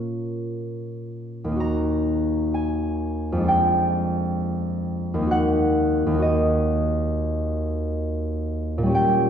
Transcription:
0.00 1.57 A#2 medium
0.00 1.47 A#3 soft
0.00 1.61 C#4 soft
0.00 1.63 F4 soft
0.00 2.69 A#4 medium
0.00 1.65 C#5 medium
1.44 3.44 D#2 medium
1.44 3.45 A#3 soft
1.52 3.47 D#4 soft
1.56 3.49 F#4 soft
1.60 3.51 A#5 medium
2.54 4.13 G#5 medium
3.32 5.26 F2 medium
3.37 5.28 G#3 soft
3.37 5.30 D4 soft
3.44 5.32 F4 soft
3.48 6.58 G5 medium
5.14 6.05 D#2 medium
5.18 6.09 A#3 soft
5.18 6.13 D#4 soft
5.27 6.17 F#4 medium
5.31 8.97 F#5 medium
6.07 8.89 D#2 medium
6.07 9.30 A#3 soft
6.14 8.93 D#4 medium
6.18 8.95 F#4 medium
6.18 8.97 D#5 medium
8.78 9.30 A#2 medium
8.83 9.30 G3 medium
8.83 9.30 C#4 medium
8.89 9.30 G4 medium
8.95 9.30 G5 loud

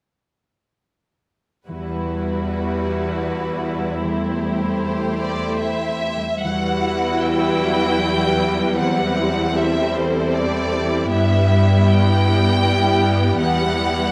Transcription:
1.68 6.19 E2 soft
1.68 4.03 E3 soft
1.68 4.00 G3 soft
1.68 6.20 E4 soft
1.68 4.00 F#4 soft
1.68 4.00 B4 soft
1.95 3.77 G3 soft
2.22 3.52 B3 soft
2.49 3.01 F#4 soft
3.02 4.07 F#4 soft
3.53 4.07 B3 soft
3.78 4.28 G3 soft
4.03 6.42 E3 soft
4.03 6.19 A3 soft
4.03 6.20 G4 soft
4.03 6.20 C5 soft
4.29 6.16 G3 soft
4.55 5.87 C4 soft
4.80 5.32 A4 soft
5.19 5.57 D5 medium
5.33 6.47 A4 soft
5.61 6.44 E5 medium
5.88 6.47 C4 soft
6.17 10.07 G3 soft
6.43 11.07 E2 soft
6.43 8.78 E3 soft
6.43 11.07 G3 soft
6.43 8.75 E4 soft
6.43 8.75 F#4 soft
6.43 9.53 B4 soft
6.43 7.22 F#5 soft
6.83 8.39 E4 soft
7.22 7.99 B4 soft
7.22 8.80 G5 medium
7.61 8.82 F#3 soft
8.00 8.83 B4 soft
8.40 9.18 E4 soft
8.79 11.14 E3 soft
8.79 11.07 C4 soft
8.79 13.35 E4 soft
8.79 9.56 F#5 medium
9.19 10.71 E4 soft
9.57 11.11 A4 soft
9.57 10.33 C5 soft
9.57 9.96 E5 medium
9.96 11.14 A4 soft
9.96 10.35 C5 soft
10.34 11.14 C5 soft
10.34 11.11 D5 medium
10.73 11.86 E4 soft
11.11 13.39 G2 soft
11.11 13.42 G2 soft
11.11 14.12 G3 soft
11.11 14.12 B3 soft
11.11 14.12 G4 soft
11.11 11.86 E5 medium
11.50 13.00 G3 soft
11.88 12.62 E4 soft
11.88 13.39 G5 medium
12.26 14.12 B4 soft
12.64 14.12 E4 soft
13.01 13.77 G3 soft
13.39 14.12 E2 soft
13.39 14.12 E4 soft
13.39 14.12 F#5 medium
13.78 14.12 G3 soft

